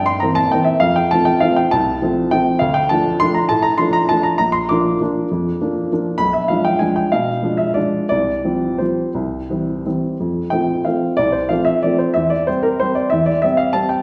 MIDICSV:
0, 0, Header, 1, 2, 480
1, 0, Start_track
1, 0, Key_signature, -1, "major"
1, 0, Tempo, 298954
1, 1323, Time_signature, 3, 2, 24, 8
1, 8987, Tempo, 305810
1, 11867, Tempo, 344828
1, 15707, Tempo, 330033
1, 18107, Tempo, 319149
1, 21390, End_track
2, 0, Start_track
2, 0, Title_t, "Upright piano"
2, 0, Program_c, 0, 0
2, 0, Note_on_c, 0, 43, 49
2, 94, Note_on_c, 0, 84, 78
2, 113, Control_c, 0, 64, 127
2, 321, Note_on_c, 0, 82, 68
2, 334, Note_off_c, 0, 43, 0
2, 339, Note_off_c, 0, 84, 0
2, 362, Note_on_c, 0, 52, 32
2, 364, Note_on_c, 0, 58, 36
2, 365, Note_on_c, 0, 60, 38
2, 564, Note_on_c, 0, 81, 83
2, 577, Note_off_c, 0, 82, 0
2, 796, Note_off_c, 0, 52, 0
2, 797, Note_off_c, 0, 58, 0
2, 797, Note_off_c, 0, 60, 0
2, 823, Note_off_c, 0, 81, 0
2, 827, Note_on_c, 0, 79, 73
2, 850, Control_c, 0, 64, 0
2, 850, Note_on_c, 0, 52, 35
2, 860, Note_on_c, 0, 58, 36
2, 869, Note_on_c, 0, 60, 38
2, 1036, Note_on_c, 0, 76, 64
2, 1078, Note_off_c, 0, 79, 0
2, 1283, Note_off_c, 0, 52, 0
2, 1283, Note_on_c, 0, 77, 86
2, 1288, Note_off_c, 0, 58, 0
2, 1293, Note_off_c, 0, 60, 0
2, 1301, Note_off_c, 0, 76, 0
2, 1317, Note_on_c, 0, 41, 52
2, 1538, Note_on_c, 0, 79, 71
2, 1542, Note_off_c, 0, 77, 0
2, 1631, Control_c, 0, 64, 127
2, 1782, Note_on_c, 0, 81, 82
2, 1786, Note_off_c, 0, 41, 0
2, 1792, Note_off_c, 0, 79, 0
2, 1807, Note_on_c, 0, 53, 36
2, 1810, Note_on_c, 0, 57, 38
2, 1817, Note_on_c, 0, 60, 39
2, 2010, Note_on_c, 0, 79, 77
2, 2037, Note_off_c, 0, 81, 0
2, 2249, Note_off_c, 0, 53, 0
2, 2250, Note_off_c, 0, 57, 0
2, 2254, Note_off_c, 0, 60, 0
2, 2254, Note_on_c, 0, 77, 76
2, 2277, Note_off_c, 0, 79, 0
2, 2286, Note_on_c, 0, 53, 35
2, 2291, Note_on_c, 0, 57, 36
2, 2297, Note_on_c, 0, 60, 44
2, 2315, Control_c, 0, 64, 0
2, 2512, Note_on_c, 0, 79, 65
2, 2521, Note_off_c, 0, 77, 0
2, 2722, Note_off_c, 0, 53, 0
2, 2725, Note_off_c, 0, 57, 0
2, 2728, Note_off_c, 0, 60, 0
2, 2751, Note_on_c, 0, 81, 84
2, 2761, Note_off_c, 0, 79, 0
2, 2776, Note_on_c, 0, 36, 51
2, 3093, Control_c, 0, 64, 127
2, 3229, Note_off_c, 0, 36, 0
2, 3244, Note_on_c, 0, 53, 40
2, 3257, Note_on_c, 0, 57, 35
2, 3262, Note_on_c, 0, 60, 40
2, 3687, Note_off_c, 0, 53, 0
2, 3694, Note_off_c, 0, 57, 0
2, 3697, Note_off_c, 0, 60, 0
2, 3714, Note_on_c, 0, 79, 80
2, 3723, Note_off_c, 0, 81, 0
2, 3734, Note_on_c, 0, 53, 38
2, 3738, Note_on_c, 0, 57, 34
2, 3747, Control_c, 0, 64, 0
2, 3752, Note_on_c, 0, 60, 40
2, 4152, Note_off_c, 0, 53, 0
2, 4154, Note_off_c, 0, 57, 0
2, 4160, Note_on_c, 0, 77, 74
2, 4162, Note_off_c, 0, 60, 0
2, 4188, Note_off_c, 0, 79, 0
2, 4197, Note_on_c, 0, 38, 53
2, 4399, Note_on_c, 0, 79, 77
2, 4409, Note_off_c, 0, 77, 0
2, 4485, Control_c, 0, 64, 127
2, 4645, Note_on_c, 0, 81, 79
2, 4651, Note_off_c, 0, 38, 0
2, 4651, Note_off_c, 0, 79, 0
2, 4673, Note_on_c, 0, 53, 39
2, 4680, Note_on_c, 0, 57, 40
2, 4687, Note_on_c, 0, 62, 39
2, 5110, Note_off_c, 0, 53, 0
2, 5114, Note_off_c, 0, 57, 0
2, 5118, Note_off_c, 0, 62, 0
2, 5134, Note_on_c, 0, 84, 91
2, 5144, Note_off_c, 0, 81, 0
2, 5175, Note_on_c, 0, 53, 35
2, 5176, Control_c, 0, 64, 0
2, 5176, Note_on_c, 0, 62, 39
2, 5180, Note_on_c, 0, 57, 39
2, 5370, Note_on_c, 0, 82, 64
2, 5387, Note_off_c, 0, 84, 0
2, 5592, Note_off_c, 0, 53, 0
2, 5592, Note_off_c, 0, 62, 0
2, 5594, Note_off_c, 0, 57, 0
2, 5598, Note_on_c, 0, 81, 82
2, 5614, Note_off_c, 0, 82, 0
2, 5629, Note_on_c, 0, 45, 58
2, 5820, Note_on_c, 0, 82, 79
2, 5844, Note_off_c, 0, 81, 0
2, 5864, Control_c, 0, 64, 127
2, 6064, Note_on_c, 0, 84, 82
2, 6081, Note_off_c, 0, 82, 0
2, 6087, Note_off_c, 0, 45, 0
2, 6087, Note_on_c, 0, 53, 38
2, 6099, Note_on_c, 0, 57, 39
2, 6110, Note_on_c, 0, 62, 43
2, 6307, Note_on_c, 0, 82, 83
2, 6330, Note_off_c, 0, 84, 0
2, 6539, Note_off_c, 0, 53, 0
2, 6546, Note_off_c, 0, 57, 0
2, 6552, Note_off_c, 0, 62, 0
2, 6563, Note_on_c, 0, 81, 84
2, 6576, Note_off_c, 0, 82, 0
2, 6596, Note_on_c, 0, 53, 39
2, 6604, Note_on_c, 0, 57, 35
2, 6609, Note_on_c, 0, 62, 41
2, 6617, Control_c, 0, 64, 0
2, 6797, Note_on_c, 0, 82, 70
2, 6823, Note_off_c, 0, 81, 0
2, 7009, Note_off_c, 0, 82, 0
2, 7027, Note_off_c, 0, 53, 0
2, 7032, Note_off_c, 0, 57, 0
2, 7033, Note_on_c, 0, 82, 83
2, 7035, Note_off_c, 0, 62, 0
2, 7059, Note_on_c, 0, 34, 48
2, 7261, Note_on_c, 0, 84, 79
2, 7289, Note_off_c, 0, 82, 0
2, 7379, Control_c, 0, 64, 127
2, 7525, Note_off_c, 0, 84, 0
2, 7527, Note_off_c, 0, 34, 0
2, 7528, Note_on_c, 0, 86, 75
2, 7552, Note_on_c, 0, 58, 37
2, 7560, Note_on_c, 0, 53, 37
2, 7566, Note_on_c, 0, 62, 40
2, 7990, Note_off_c, 0, 58, 0
2, 7994, Note_off_c, 0, 53, 0
2, 7997, Note_off_c, 0, 62, 0
2, 8050, Note_on_c, 0, 53, 40
2, 8051, Control_c, 0, 64, 0
2, 8053, Note_on_c, 0, 58, 33
2, 8053, Note_on_c, 0, 62, 41
2, 8471, Note_off_c, 0, 53, 0
2, 8472, Note_off_c, 0, 62, 0
2, 8473, Note_off_c, 0, 58, 0
2, 8532, Note_on_c, 0, 41, 49
2, 8777, Control_c, 0, 64, 127
2, 8981, Note_off_c, 0, 41, 0
2, 9013, Note_on_c, 0, 62, 38
2, 9014, Note_on_c, 0, 53, 34
2, 9018, Note_on_c, 0, 58, 34
2, 9214, Note_off_c, 0, 86, 0
2, 9435, Note_off_c, 0, 53, 0
2, 9435, Note_off_c, 0, 62, 0
2, 9437, Note_off_c, 0, 58, 0
2, 9487, Control_c, 0, 64, 0
2, 9498, Note_on_c, 0, 53, 34
2, 9505, Note_on_c, 0, 58, 32
2, 9508, Note_on_c, 0, 62, 38
2, 9898, Note_on_c, 0, 83, 94
2, 9905, Note_off_c, 0, 53, 0
2, 9909, Note_off_c, 0, 58, 0
2, 9910, Note_off_c, 0, 62, 0
2, 9930, Note_on_c, 0, 35, 50
2, 10140, Note_on_c, 0, 76, 62
2, 10147, Note_off_c, 0, 83, 0
2, 10235, Control_c, 0, 64, 127
2, 10376, Note_on_c, 0, 77, 59
2, 10390, Note_off_c, 0, 35, 0
2, 10394, Note_off_c, 0, 76, 0
2, 10404, Note_on_c, 0, 53, 35
2, 10415, Note_on_c, 0, 56, 34
2, 10424, Note_on_c, 0, 62, 36
2, 10632, Note_on_c, 0, 79, 75
2, 10635, Note_off_c, 0, 77, 0
2, 10846, Note_off_c, 0, 53, 0
2, 10852, Note_off_c, 0, 56, 0
2, 10857, Note_off_c, 0, 62, 0
2, 10861, Note_on_c, 0, 80, 69
2, 10886, Note_on_c, 0, 53, 30
2, 10887, Note_off_c, 0, 79, 0
2, 10887, Note_on_c, 0, 56, 32
2, 10899, Note_on_c, 0, 62, 35
2, 10908, Control_c, 0, 64, 0
2, 11123, Note_on_c, 0, 79, 60
2, 11126, Note_off_c, 0, 80, 0
2, 11329, Note_off_c, 0, 53, 0
2, 11329, Note_off_c, 0, 56, 0
2, 11336, Note_off_c, 0, 62, 0
2, 11373, Note_off_c, 0, 79, 0
2, 11373, Note_on_c, 0, 77, 72
2, 11397, Note_on_c, 0, 47, 47
2, 11637, Control_c, 0, 64, 127
2, 11854, Note_on_c, 0, 53, 33
2, 11857, Note_off_c, 0, 47, 0
2, 11870, Note_on_c, 0, 56, 30
2, 11872, Note_on_c, 0, 62, 31
2, 12065, Note_on_c, 0, 76, 65
2, 12086, Note_off_c, 0, 77, 0
2, 12275, Note_off_c, 0, 53, 0
2, 12283, Note_off_c, 0, 56, 0
2, 12284, Note_off_c, 0, 62, 0
2, 12296, Note_on_c, 0, 74, 61
2, 12314, Note_off_c, 0, 76, 0
2, 12329, Note_on_c, 0, 53, 31
2, 12329, Note_on_c, 0, 62, 31
2, 12331, Note_on_c, 0, 56, 33
2, 12341, Control_c, 0, 64, 0
2, 12761, Note_off_c, 0, 53, 0
2, 12761, Note_off_c, 0, 62, 0
2, 12762, Note_off_c, 0, 56, 0
2, 12763, Note_off_c, 0, 74, 0
2, 12784, Note_on_c, 0, 74, 77
2, 12811, Note_on_c, 0, 36, 44
2, 13049, Control_c, 0, 64, 127
2, 13276, Note_off_c, 0, 36, 0
2, 13277, Note_on_c, 0, 53, 30
2, 13284, Note_on_c, 0, 55, 29
2, 13287, Note_on_c, 0, 60, 33
2, 13721, Note_off_c, 0, 53, 0
2, 13726, Note_off_c, 0, 55, 0
2, 13727, Note_off_c, 0, 60, 0
2, 13748, Note_on_c, 0, 72, 48
2, 13765, Note_off_c, 0, 74, 0
2, 13768, Note_on_c, 0, 53, 28
2, 13775, Note_on_c, 0, 55, 30
2, 13783, Note_on_c, 0, 60, 30
2, 13797, Control_c, 0, 64, 0
2, 14210, Note_off_c, 0, 53, 0
2, 14215, Note_off_c, 0, 55, 0
2, 14219, Note_off_c, 0, 60, 0
2, 14250, Note_on_c, 0, 36, 44
2, 14575, Control_c, 0, 64, 127
2, 14715, Note_off_c, 0, 36, 0
2, 14742, Note_on_c, 0, 52, 29
2, 14746, Note_on_c, 0, 55, 30
2, 14755, Note_on_c, 0, 60, 29
2, 15184, Note_off_c, 0, 52, 0
2, 15186, Note_off_c, 0, 55, 0
2, 15191, Note_off_c, 0, 60, 0
2, 15215, Note_off_c, 0, 72, 0
2, 15242, Note_on_c, 0, 52, 31
2, 15248, Note_on_c, 0, 55, 28
2, 15251, Control_c, 0, 64, 0
2, 15253, Note_on_c, 0, 60, 33
2, 15664, Note_off_c, 0, 52, 0
2, 15667, Note_off_c, 0, 55, 0
2, 15670, Note_off_c, 0, 60, 0
2, 15724, Note_on_c, 0, 41, 45
2, 16011, Control_c, 0, 64, 127
2, 16161, Note_on_c, 0, 79, 71
2, 16179, Note_off_c, 0, 41, 0
2, 16193, Note_on_c, 0, 53, 32
2, 16195, Note_on_c, 0, 57, 34
2, 16198, Note_on_c, 0, 60, 35
2, 16628, Note_off_c, 0, 53, 0
2, 16629, Note_off_c, 0, 57, 0
2, 16630, Note_off_c, 0, 60, 0
2, 16659, Note_off_c, 0, 79, 0
2, 16660, Note_on_c, 0, 77, 53
2, 16678, Note_on_c, 0, 53, 31
2, 16684, Note_on_c, 0, 57, 34
2, 16685, Control_c, 0, 64, 0
2, 16687, Note_on_c, 0, 60, 35
2, 17103, Note_off_c, 0, 53, 0
2, 17107, Note_off_c, 0, 57, 0
2, 17108, Note_off_c, 0, 60, 0
2, 17128, Note_on_c, 0, 74, 85
2, 17142, Note_off_c, 0, 77, 0
2, 17154, Note_on_c, 0, 36, 42
2, 17351, Note_on_c, 0, 72, 52
2, 17371, Note_off_c, 0, 74, 0
2, 17392, Control_c, 0, 64, 127
2, 17594, Note_on_c, 0, 77, 65
2, 17605, Note_off_c, 0, 72, 0
2, 17609, Note_off_c, 0, 36, 0
2, 17615, Note_on_c, 0, 53, 32
2, 17629, Note_on_c, 0, 60, 33
2, 17632, Note_on_c, 0, 57, 33
2, 17637, Control_c, 0, 64, 0
2, 17824, Note_on_c, 0, 76, 70
2, 17848, Note_off_c, 0, 77, 0
2, 18054, Note_off_c, 0, 53, 0
2, 18061, Note_off_c, 0, 60, 0
2, 18063, Note_off_c, 0, 57, 0
2, 18086, Note_off_c, 0, 76, 0
2, 18086, Note_on_c, 0, 74, 64
2, 18107, Note_on_c, 0, 53, 31
2, 18120, Note_on_c, 0, 57, 32
2, 18125, Note_on_c, 0, 60, 36
2, 18324, Note_on_c, 0, 72, 53
2, 18341, Note_off_c, 0, 74, 0
2, 18539, Note_off_c, 0, 53, 0
2, 18546, Note_off_c, 0, 57, 0
2, 18549, Note_off_c, 0, 60, 0
2, 18551, Note_on_c, 0, 76, 71
2, 18572, Note_off_c, 0, 72, 0
2, 18581, Note_on_c, 0, 40, 46
2, 18796, Note_on_c, 0, 74, 63
2, 18801, Note_off_c, 0, 76, 0
2, 18828, Control_c, 0, 64, 127
2, 19042, Note_off_c, 0, 40, 0
2, 19047, Note_off_c, 0, 74, 0
2, 19053, Note_on_c, 0, 72, 66
2, 19077, Note_on_c, 0, 55, 32
2, 19078, Control_c, 0, 64, 0
2, 19081, Note_on_c, 0, 60, 36
2, 19290, Note_on_c, 0, 70, 66
2, 19303, Note_off_c, 0, 72, 0
2, 19516, Note_off_c, 0, 55, 0
2, 19518, Note_off_c, 0, 60, 0
2, 19544, Note_on_c, 0, 72, 71
2, 19548, Note_off_c, 0, 70, 0
2, 19567, Note_on_c, 0, 55, 31
2, 19573, Note_on_c, 0, 60, 39
2, 19775, Note_on_c, 0, 74, 62
2, 19794, Note_off_c, 0, 72, 0
2, 19991, Note_off_c, 0, 55, 0
2, 19994, Note_off_c, 0, 60, 0
2, 19997, Note_on_c, 0, 76, 76
2, 20020, Note_off_c, 0, 74, 0
2, 20031, Note_on_c, 0, 40, 44
2, 20239, Note_on_c, 0, 74, 66
2, 20247, Note_off_c, 0, 76, 0
2, 20268, Control_c, 0, 64, 127
2, 20480, Note_on_c, 0, 76, 73
2, 20486, Note_off_c, 0, 40, 0
2, 20488, Note_off_c, 0, 74, 0
2, 20502, Note_on_c, 0, 55, 33
2, 20513, Note_on_c, 0, 60, 38
2, 20523, Control_c, 0, 64, 0
2, 20710, Note_on_c, 0, 77, 69
2, 20731, Note_off_c, 0, 76, 0
2, 20936, Note_off_c, 0, 55, 0
2, 20944, Note_off_c, 0, 60, 0
2, 20947, Note_on_c, 0, 81, 76
2, 20959, Note_on_c, 0, 55, 37
2, 20970, Note_off_c, 0, 77, 0
2, 20976, Note_on_c, 0, 60, 35
2, 21190, Note_on_c, 0, 79, 54
2, 21208, Note_off_c, 0, 81, 0
2, 21390, Note_off_c, 0, 55, 0
2, 21390, Note_off_c, 0, 60, 0
2, 21390, Note_off_c, 0, 79, 0
2, 21390, End_track
0, 0, End_of_file